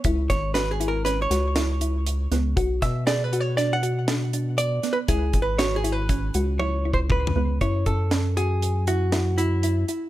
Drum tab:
HH |x--x--x--x--x--x--x--x--x--x--|x--x--x--x--x--x--x--x--x--x--|x--x--x--x--x--x--------------|x--x--x--x--x--x--x--x--x--x--|
SD |---o--o-----o--o--o--------o--|---o--o-----o-----o--------o--|------o-----------------------|------o-----------o-----------|
T1 |------------------------------|------------------------------|------------------o-----------|------------------------------|
T2 |------------------------------|------------------------------|------------------------o-----|------------------------------|
FT |------------------------------|------------------------------|--------------------------o---|------------------------------|
BD |o--o--------------------------|o--o--------------------------|o--o--------o---------o-o-----|o--o--------------------------|